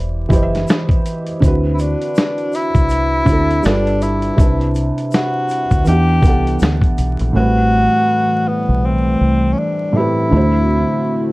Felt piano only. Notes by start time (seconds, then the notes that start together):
Already playing: E3 E4 G4 B4 C5 D5
0.29 E3 E4 G4
0.33 B4 C5 D#5
0.43 E5
1.40 D3 C4 E4
1.45 F#4 B4
3.25 D3 C4 E4
3.30 F#4 A4
3.62 G3 D4 F4
3.68 A4 B4
4.36 C3 C4 D4
4.42 E4 B4
5.84 E3 B3 D4
5.90 G4 F#5
6.21 E3 B3 D4
6.27 A4 F#5
7.33 A2 A3 C4
7.38 G3 B4
9.93 A2 A3 C4
9.98 G4 B4
10.29 D3 A3 E4
10.35 F#4 C5